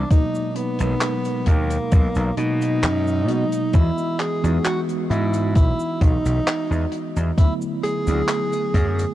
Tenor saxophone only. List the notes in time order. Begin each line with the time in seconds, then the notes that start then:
0.11 D#4
0.56 B3
1.46 A#3
2.37 D#4
3.74 E4
4.19 G#4
4.65 F#4
5.10 E4
5.55 E4
6.01 D#4
7.38 E4
7.83 G#4